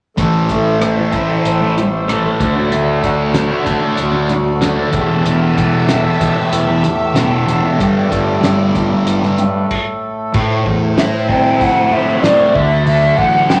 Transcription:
0.17 A1 A2 E3 A3 E4 C5, kick, closed hi-hat
0.49 A2 E3 A3, kick, closed hi-hat
0.80 A2 E3 A3, cross-stick, closed hi-hat
0.96 E3 A3
1.11 A2 E3 A3, kick, closed hi-hat
1.28 E3 A3
1.45 A1, closed hi-hat
1.60 E3 A3
1.78 muted distorted electric guitar stroke, closed hi-hat
2.08 A2 E3 A3, cross-stick, closed hi-hat
2.24 E3 A3
2.40 D2 D3 A3 D4 F#4 D5, kick, closed hi-hat
2.56 A3 D4
2.70 D3 A3 D4, closed hi-hat
3.03 D3 A3 D4, kick, closed hi-hat
3.33 D3 A3 D4, snare, closed hi-hat
3.49 A3 D4
3.65 D3 A3 D4, kick, closed hi-hat
3.80 A3 D4
3.97 D2, closed hi-hat
4.12 A3 D4
4.29 muted distorted electric guitar stroke, closed hi-hat
4.61 D3 A3 D4, snare, closed hi-hat
4.76 A3 D4
4.90 E2 B2 E3 B3 G4 E5, kick, closed hi-hat
5.07 B2 E3
5.22 E2 B2 E3, closed hi-hat
5.54 E2 B2 E3, kick, closed hi-hat
5.87 E2 B2 E3, snare, closed hi-hat
6.03 B2 E3
6.19 E2 B2 E3, kick, closed hi-hat
6.34 B2 E3
6.52 E2, closed hi-hat
6.66 B2 E3
6.83 muted distorted electric guitar stroke, closed hi-hat
7.14 E2 B2 E3, snare, closed hi-hat
7.29 B2 E3
7.45 E2 B2 E3, closed hi-hat
7.62 B2 E3
7.77 G2 D3 G3 B3 D5, kick, closed hi-hat
8.09 G2 D3 G3, kick, closed hi-hat
8.40 G2 D3 G3, snare, closed hi-hat
8.56 D3 G3
8.73 G2 D3 G3, kick, closed hi-hat
8.89 D3 G3
9.05 G2, closed hi-hat
9.22 D3 G3, snare
9.38 muted distorted electric guitar stroke, closed hi-hat
9.71 kick, crash
10.34 A2 A3 E4 C5, kick, crash
10.66 E2 A3, kick
10.97 E4 E5, snare, open hi-hat
11.28 C4 G5, kick
11.60 A3 F#5, kick, open hi-hat
11.91 A2 C4 E5
12.23 A2 E4 D5, snare, open hi-hat
12.55 D2 D3 F#3 D4 A4 E5, kick
12.87 D3 E5, open hi-hat
13.17 A1 A3 F#5, kick
13.49 F#4 G5, snare, open hi-hat

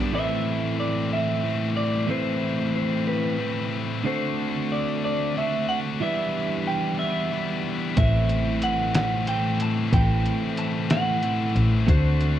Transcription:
Already playing: D3 G3 B3 D4 F#4
0.13 A2 E3 A3 C4 E4 B4 E5
0.80 D5
1.13 E5
1.43 A2 E3 A3 C4 E4
1.77 D5
2.08 A2 E3 A3 C4 E4 B4 C5
2.75 C5
3.07 B4
3.39 A2 E3 A3 C4 E4
4.05 D3 A3 C4 D4 F#4 A4 C5
4.72 D5
5.05 D5
5.36 D3 A3 D4 F#4 E5
5.69 F#5
6.01 E3 G3 B3 D4 E4 B4 E5
6.67 G5
6.99 E5
7.31 E3 G3 B3 E4
7.97 A1 A2 E3 A3 C4 E4 B4 E5, kick, closed hi-hat
8.29 closed hi-hat
8.62 F#5, closed hi-hat
8.94 F#5, snare, closed hi-hat
9.26 A2 E3 A3 C4 E4 G5, closed hi-hat
9.60 A5, closed hi-hat
9.92 A1 A2 E3 A3 C4 E4 B4 G5, kick, closed hi-hat
10.26 closed hi-hat
10.57 A5, closed hi-hat
10.90 F#5, snare, closed hi-hat
11.23 A2 E3 A3 C4 E4, closed hi-hat
11.56 A1, closed hi-hat
11.88 D2 D3 A3 C4 D4 F#4 A4 C5, kick, closed hi-hat
12.21 closed hi-hat

